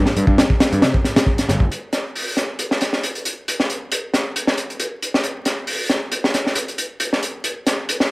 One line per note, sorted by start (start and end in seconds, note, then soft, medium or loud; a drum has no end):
0.06 snare medium
0.17 0.24 G2 loud
0.17 closed hi-hat medium
0.27 0.34 G2 medium
0.27 kick loud
0.38 snare loud
0.38 closed hi-hat medium
0.50 kick medium
0.60 snare loud
0.60 closed hi-hat medium
0.72 0.83 G2 medium
0.72 closed hi-hat soft
0.82 0.90 C3 medium
0.82 snare loud
0.82 closed hi-hat medium
0.94 kick medium
1.04 snare soft
1.04 closed hi-hat medium
1.16 snare loud
1.16 closed hi-hat medium
1.26 kick medium
1.38 snare soft
1.38 closed hi-hat medium
1.49 1.63 G1 medium
1.49 snare soft
1.49 closed hi-hat medium
1.60 kick medium
1.72 closed hi-hat medium
1.93 snare soft
1.93 closed hi-hat medium
2.16 open hi-hat medium
2.37 snare soft
2.37 closed hi-hat medium
2.59 closed hi-hat medium
2.71 snare soft
2.81 snare soft
2.81 closed hi-hat medium
2.93 snare soft
3.03 closed hi-hat medium
3.15 closed hi-hat soft
3.25 closed hi-hat medium
3.48 closed hi-hat medium
3.60 snare soft
3.70 closed hi-hat medium
3.92 closed hi-hat medium
4.14 snare soft
4.14 closed hi-hat medium
4.36 closed hi-hat medium
4.47 snare medium
4.58 closed hi-hat medium
4.70 closed hi-hat soft
4.80 closed hi-hat medium
5.02 closed hi-hat medium
5.14 snare medium
5.24 closed hi-hat medium
5.45 snare soft
5.45 closed hi-hat medium
5.67 open hi-hat medium
5.89 snare soft
5.89 closed hi-hat medium
6.12 closed hi-hat medium
6.24 snare soft
6.34 snare soft
6.34 closed hi-hat medium
6.46 snare soft
6.55 closed hi-hat medium
6.68 closed hi-hat soft
6.78 closed hi-hat medium
7.00 closed hi-hat medium
7.13 snare soft
7.23 closed hi-hat medium
7.44 closed hi-hat medium
7.67 snare soft
7.67 closed hi-hat medium
7.89 closed hi-hat medium
8.00 snare medium